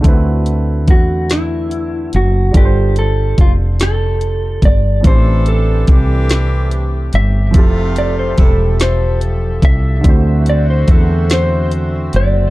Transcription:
<<
  \new Staff \with { instrumentName = "Clean electric guitar" } { \time 6/8 \key d \dorian \tempo 4. = 48 r4 fis'8 e'4 fis'8 | g'8 a'8 f'8 a'4 d''8 | c''8 a'4. r8 e''8~ | e''8 d''16 c''16 a'8 c''8 r8 e''8~ |
e''8 d''16 c''16 a'8 c''8 r8 d''8 | }
  \new Staff \with { instrumentName = "Grand piano" } { \time 6/8 \key d \dorian <d a c' e' f' fis' b'>2. | <g d' f' a' b' c''>2. | <a, e c' d' g' c''>2. | <f c' e' g' a'>2. |
<d a c' e' fis' c''>2. | }
  \new Staff \with { instrumentName = "Analog synth pad" } { \time 6/8 \key d \dorian << { r2. | r2. | <c' g'>2. | <f a'>2. |
<d c' fis' c''>2. | } \\ { r2. | r2. | a2. | e''2.~ |
e''2. | } >> }
  \new Staff \with { instrumentName = "Horn section" } { \time 6/8 \key d \dorian r2. | r2. | <e d' a'>4 <e d' g'>4. r8 | <c a f'>4 <c a e'>8 r4. |
r2. | }
  \new Staff \with { instrumentName = "Fretless electric bass" } { \clef bass \time 6/8 \key d \dorian d,4 e,4. fis,,8 | g,,4 f,,4. g,,8 | a,,4 c,4. g,,8 | f,,4 e,,4. c,8 |
d,4 e,4. fis,,8 | }
  \new DrumStaff \with { instrumentName = "Drums" } \drummode { \time 6/8 <hh bd>8 hh8 <hh bd>8 <hh sn>8 hh8 hh8 | <hh bd>8 hh8 <hh bd>8 <hh sn>8 hh8 <hh bd>8 | <hh bd>8 hh8 <hh bd>8 <hh sn>8 hh8 hh8 | <hh bd>8 hh8 <hh bd>8 <hh sn>8 hh8 <hh bd>8 |
<hh bd>8 hh8 <hh bd>8 <hh sn>8 hh8 hh8 | }
>>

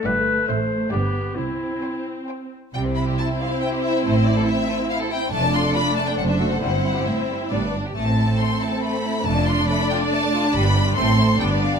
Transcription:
<<
  \new Staff \with { instrumentName = "Violin section" } { \time 3/4 \key c \major \tempo 4 = 138 g''4 c'''4 b''4 | r4 c'''4 c'''4 | g''8 b''8 a''8 f''8 g''8 e''8 | c''8 d''8 e''4 f''8 g''8 |
a''8 c'''8 b''8 a''16 g''16 fis''16 e''8 fis''16 | fis''4 e''4 r4 | a''4 c'''8 a''8 b''4 | a''8 c'''8 b''8 g''8 a''4 |
b''4 c'''4 g''8 f''8 | }
  \new Staff \with { instrumentName = "Clarinet" } { \time 3/4 \key c \major b'4 c''4 g'4 | e'2 r4 | r2. | r2. |
r2. | r2. | r2. | r2. |
r2. | }
  \new Staff \with { instrumentName = "Violin section" } { \time 3/4 \key c \major << { <d'' f''>4 <c'' e''>4 <d'' g''>4 | r4 <c'' g''>4 <c'' g''>4 | c''2.~ | c''2. |
d''2 c''4~ | c''2 d''8 r8 | a'2. | d''2.~ |
d''4 a'4 d''4 | } \\ { r2. | r2. | g16 c'16 e'16 g'16 e'16 c'16 g16 c'16 e'16 g'16 e'16 c'16 | a16 c'16 e'16 a'16 e'16 c'16 a16 c'16 e'16 a'16 e'16 c'16 |
a16 d'16 f'16 a'16 f'16 d'16 a16 d'16 c'16 d'16 fis'16 a'16 | g16 c'16 e'16 g'16 e'16 c'16 g16 c'16 g16 b16 d'16 g'16 | a16 c'16 e'16 c'16 a16 c'16 e'16 c'16 a16 c'16 e'16 c'16 | a16 d'16 f'16 d'16 a16 d'16 f'16 d'16 a16 d'16 f'16 d'16 |
g16 b16 d'16 f'16 a16 c'16 e'16 c'16 g16 b16 d'16 g'16 | } >> }
  \new Staff \with { instrumentName = "Viola section" } { \time 3/4 \key c \major << { a2 b4 | c'2~ c'8 r8 | e'2.~ | e'2. |
d'2. | e'2 d'8 r8 | c'2. | d'2.~ |
d'4 c'4 d'4 | } \\ { r2. | r2. | c'2.~ | c'2. |
a2. | c'2 b8 r8 | a2.~ | a2. |
g4 c'4 b4 | } >> }
  \new Staff \with { instrumentName = "Cello section" } { \clef bass \time 3/4 \key c \major g,4 a,4 g,4 | c4 r2 | c4 r2 | a,4 r2 |
f,4 r4 fis,4 | g,4 a,8 g,8 a,8 g,8 | a,4 r2 | f,4 r2 |
g,4 a,4 g,4 | }
  \new Staff \with { instrumentName = "Double bass section" } { \clef bass \time 3/4 \key c \major g,,4 a,,4 g,,4 | c,4 r2 | c,4 r2 | a,,4 r2 |
f,,4 r4 fis,,4 | g,,4 r4 g,,4 | a,,4 r2 | f,,4 r2 |
g,,4 a,,4 g,,4 | }
>>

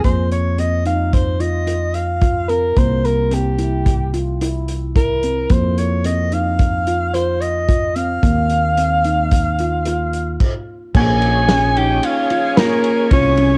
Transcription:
<<
  \new Staff \with { instrumentName = "Soprano saxophone" } { \time 5/4 \key f \minor \tempo 4 = 110 c''8 des''8 ees''8 f''8 c''8 ees''4 f''4 bes'8 | c''8 bes'8 g'4. r4. bes'4 | c''8 des''8 ees''8 f''4. c''8 ees''4 f''8~ | f''1 r4 |
aes''4. g''8 f''4 bes'4 des''4 | }
  \new Staff \with { instrumentName = "Tonewheel organ" } { \time 5/4 \key f \minor r1 r4 | r1 r4 | r1 r4 | r1 r4 |
<des' aes' des''>1~ <des' aes' des''>4 | }
  \new Staff \with { instrumentName = "Clean electric guitar" } { \time 5/4 \key f \minor r1 r4 | r1 r4 | r1 r4 | r1 r4 |
aes'4. g'8 f'4 bes4 des'4 | }
  \new Staff \with { instrumentName = "Handpan" } { \time 5/4 \key f \minor bes4 c'8 ees'4 f'8 f'4 f'8 c'8 | bes4 c'8 e'4 f'8 e'4 e'8 c'8 | bes4 c'8 ees'4 f'8 f'4 f'8 c'8 | bes4 c'8 ees'4 f'8 f'4 r4 |
bes4 des'8 ees'4 f'8 f'4 f'8 des'8 | }
  \new Staff \with { instrumentName = "Fingered electric bass" } { \clef bass \time 5/4 \key f \minor f,1~ f,4 | c,1~ c,4 | f,1~ f,4 | ees,1 r4 |
bes,,2 r2 c,4 | }
  \new DrumStaff \with { instrumentName = "Drums" } \drummode { \time 5/4 <hh bd>8 hh8 hh8 hh8 <hh bd>8 hh8 hh8 hh8 <hh bd>8 hh8 | <hh bd>8 hh8 hh8 hh8 <hh bd>8 hh8 hh8 hh8 <hh bd>8 hh8 | <hh bd>8 hh8 hh8 hh8 <hh bd>8 hh8 hh8 hh8 <hh bd>8 hh8 | <hh bd>8 hh8 hh8 hh8 <hh bd>8 hh8 hh8 hh8 <cymc bd>4 |
<cymc bd>8 cymr8 <cymr sn>8 cymr8 cymr8 cymr8 <cymr sn>8 cymr8 <bd cymr sn>8 cymr8 | }
>>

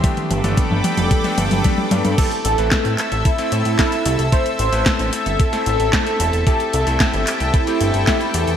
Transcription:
<<
  \new Staff \with { instrumentName = "Analog synth pad" } { \time 4/4 \key a \minor \tempo 4 = 112 << { <b'' d'''>1 | <a'' e'''>1~ | <a'' e'''>1 | g''1 | } \\ { <a' g''>1 | <a' e''>1~ | <a' e''>1~ | <a' e''>1 | } >> }
  \new Staff \with { instrumentName = "Analog synth lead" } { \time 4/4 \key a \minor r1 | a'8 a'8 r4 e'2 | c''8 c''8 r4 a'2 | a'8 a'8 r4 e'2 | }
  \new Staff \with { instrumentName = "Electric grand piano" } { \time 4/4 \key a \minor <a b d' g'>8. <a b d' a'>8. <a b d' g'>8. <a b d' g'>8. <a b d' g'>8 <a b d' g'>8 | <a c' e' a'>8. <a c' e' b'>8. <a c' e' a'>8. <a c' e' a'>8. <a c' e' a'>8 <a c' e' a'>8 | <a c' e' a'>8. <a c' e' b'>8. <a c' e' a'>8. <a c' e' a'>8. <a c' e' a'>8 <a c' e' a'>8 | <a c' e' g'>8. <a c' e' a'>8. <a c' e' g'>8. <a c' e' g'>8. <a c' e' g'>8 <a c' e' g'>8 | }
  \new Staff \with { instrumentName = "Analog synth bass" } { \clef bass \time 4/4 \key a \minor r8 g,,16 g,,16 r16 g,,16 r16 f,,16 r8 g,,16 g,,16 r8 g,16 g,16 | r8 a,,16 a,,16 r16 a,16 r16 a,,16 r8 a,16 a,16 r8 c,16 c,16 | r8 a,,16 a,,16 r16 a,,16 r16 g,,16 r8 a,,16 a,,16 r8 e,,16 e,,16 | r8 c,16 c,16 r16 g,,16 r16 c,16 r8 g,,16 g,,16 r8 e,16 e,16 | }
  \new DrumStaff \with { instrumentName = "Drums" } \drummode { \time 4/4 <hh bd toml>16 <hh toml>16 <hh toml>16 <hh toml>16 <hh bd toml>16 toml16 <hh toml>16 <hh toml>16 <hh bd toml>16 <hh toml>16 <hh toml>16 <hh toml>16 <hh bd toml>16 toml16 <hh toml>16 <hh toml>16 | <cymc hh bd>16 hh16 hh16 hh16 <hc hh bd sn>16 hh16 <hc hh>16 hh16 <hh bd>16 hh16 hh16 hh16 <hc hh bd sn>16 hh16 hh16 hh16 | <hh bd>16 hh16 hh16 hh16 <hc hh bd sn>16 hh16 hh16 hh16 <hh bd>16 <hh sn>16 hh16 hh16 <hc hh bd sn>16 hh16 hh16 hh16 | <hh bd>16 hh16 hh16 hh16 <hc hh bd sn>16 hh16 <hc hh>16 hh16 <hh bd>16 hh16 hh16 hh16 <hc hh bd sn>16 hh16 hh16 hh16 | }
>>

